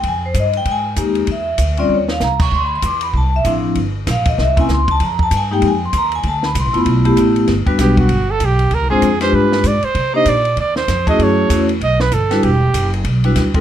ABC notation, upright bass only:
X:1
M:4/4
L:1/8
Q:"Swing" 1/4=194
K:Flyd
V:1 name="Upright bass" clef=bass
F,,2 G,,2 _A,,2 _E,,2 | E,,2 D,,2 _E,,2 C,,2 | D,,2 E,,2 C,,2 A,,,2 | G,,,2 _B,,,2 C,,2 _D,,2 |
F,,2 G,,2 F,,2 _E,,2 | D,,2 (3C,, A,,, F,,, B,,,2 A,,,2 | [K:Clyd] G,,, z B,,,2 G,,,2 B,,,2 | (3D,, C,, _A,,, =F,,2 G,,2 _A,, z |
C,2 _B,,2 _E,,2 =F,,2 | F,,2 E,,2 B,,,2 G,,,2 | E,,,2 F,,,2 B,,,2 D,,2 |]